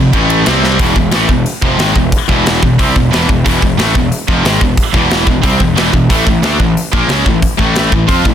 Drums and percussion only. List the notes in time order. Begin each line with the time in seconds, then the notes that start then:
0.13 kick, ride
0.30 ride
0.46 snare, ride
0.64 snare
0.79 kick, open hi-hat
0.96 kick
1.12 snare, open hi-hat
1.29 kick
1.46 open hi-hat
1.62 kick
1.79 snare, open hi-hat
1.96 kick
2.12 kick, open hi-hat
2.29 kick
2.46 snare, open hi-hat
2.63 kick
2.79 kick, open hi-hat
2.96 kick
3.13 snare, open hi-hat
3.29 kick
3.46 kick, open hi-hat
3.62 kick
3.79 snare, open hi-hat
3.95 kick
4.12 open hi-hat
4.28 kick
4.45 snare, open hi-hat
4.61 kick
4.77 kick, open hi-hat
4.94 kick
5.11 snare, open hi-hat
5.27 kick
5.43 kick, open hi-hat
5.60 kick
5.77 snare, open hi-hat
5.93 kick
6.10 kick, open hi-hat
6.27 kick
6.43 snare, open hi-hat
6.60 kick
6.77 open hi-hat
6.93 kick
7.09 snare, open hi-hat
7.26 kick
7.42 kick, open hi-hat
7.59 kick
7.76 snare, open hi-hat
7.92 kick
8.09 kick, open hi-hat
8.25 kick